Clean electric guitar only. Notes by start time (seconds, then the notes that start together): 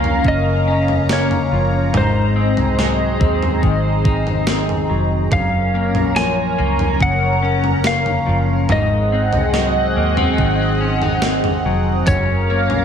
Already playing: F#2 F3 A#3 C#4
0.25 C#3
0.68 C#4
1.10 A#3
1.52 F3
1.93 G#2 D#4
2.36 C4
2.78 F#3
3.20 C4
3.62 D#3
4.05 D#4
4.47 C4
4.90 F#3
5.33 F#2 C#4
5.74 A#3
6.17 F3
6.58 A#3
7.01 C#3
7.42 C#4
7.85 A#3
8.26 F3
8.70 G#2 D#4
9.12 C4
9.54 F#3
9.97 A#3
10.17 C4
10.38 D#3
10.81 C#4
11.03 D#4
11.23 C4
11.66 F#3
12.08 F#2 C#4
12.51 A#3